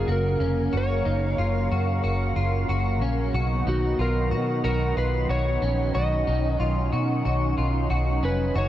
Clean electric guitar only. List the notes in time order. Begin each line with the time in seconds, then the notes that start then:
0.08 F#4
0.40 C#4
0.73 F#4
1.05 D#4
1.38 F4
1.72 F#4
2.04 F#4
2.36 F4
2.69 F#4
3.02 C#4
3.35 F#4
3.67 D#4
3.99 F4
4.31 F#4
4.64 F#4
4.97 F4
5.29 F#4
5.62 C#4
5.95 F#4
6.27 D#4
6.60 F4
6.93 F#4
7.25 F#4
7.58 F4
7.90 F#4
8.23 C#4
8.55 F#4